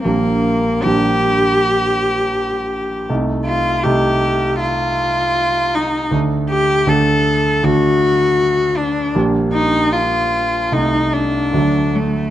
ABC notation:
X:1
M:4/4
L:1/8
Q:1/4=79
K:Gm
V:1 name="Cello"
B,2 G6 | z F G2 F3 E | z G A2 ^F3 D | z E F2 E D2 A, |]
V:2 name="Grand piano"
[B,,,G,B,D]2 [B,,,G,B,D]6 | [C,,A,E]2 [C,,A,E]6 | [D,,A,D]2 [D,,A,D]2 [D,,A,D]4 | [B,,,G,B,D]4 [C,,A,E]2 [D,,^F,A,D]2 |]